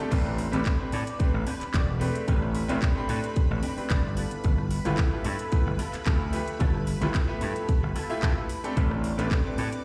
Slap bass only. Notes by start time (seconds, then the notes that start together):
0.12 A1
0.53 A1
0.93 A2
1.20 muted slap bass stroke
1.34 A1
1.61 muted slap bass stroke
1.74 E1
2.28 A1
2.69 A1
3.09 A2
3.51 A1
3.78 muted slap bass stroke
3.90 G1
4.45 G1
4.86 G1
5.25 G2
5.52 muted slap bass stroke
5.67 G1
5.94 muted slap bass stroke
6.07 D2
6.61 G1
7.02 G1
7.42 G2
7.83 G1
8.10 muted slap bass stroke
8.23 G2
8.77 A1
9.18 A1
9.58 A2